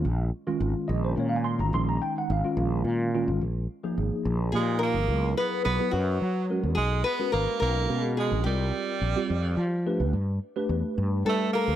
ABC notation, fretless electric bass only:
X:1
M:6/8
L:1/16
Q:3/8=71
K:Bbdor
V:1 name="Fretless electric bass" clef=bass
B,,,2 z2 A,,, z B,,,2 B,,3 A,,, | B,,,2 z2 A,,, z B,,,2 B,,3 A,,, | B,,,2 z2 A,,, z B,,,2 B,,3 A,,, | D,,2 z2 _C,, z _G,,2 _G,3 _F,, |
=B,,,2 z2 A,,, z B,,,2 =B,,3 _B,,, | C,,2 z2 B,,, z F,,2 F,3 =D,, | G,,2 z2 =E,, z G,,2 G,3 E,, |]